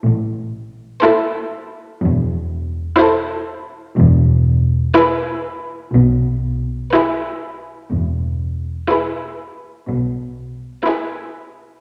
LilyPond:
<<
  \new Staff \with { instrumentName = "Violin section" } { \time 4/4 \key e \phrygian \tempo 4 = 61 r4 c''4 r4 c''4 | r4 b'4 r4 b'4 | r4 b'4 r4 b'4 | }
  \new Staff \with { instrumentName = "Violin section" } { \time 4/4 \key e \phrygian r4 a'4 r4 a'4 | r4 gis'4 r4 gis'4 | r4 gis'4 r4 gis'4 | }
  \new Staff \with { instrumentName = "Viola section" } { \time 4/4 \key e \phrygian r4 e'4 r4 e'4 | r4 e'4 r4 e'4 | r4 e'4 r4 e'4 | }
  \new Staff \with { instrumentName = "Cello section" } { \clef bass \time 4/4 \key e \phrygian a,4 r4 e,4 r4 | e,4 r4 b,4 r4 | e,4 r4 b,4 r4 | }
  \new Staff \with { instrumentName = "Double bass section" } { \clef bass \time 4/4 \key e \phrygian a,,4 r4 e,,4 r4 | e,,4 r4 b,,4 r4 | e,,4 r4 b,,4 r4 | }
>>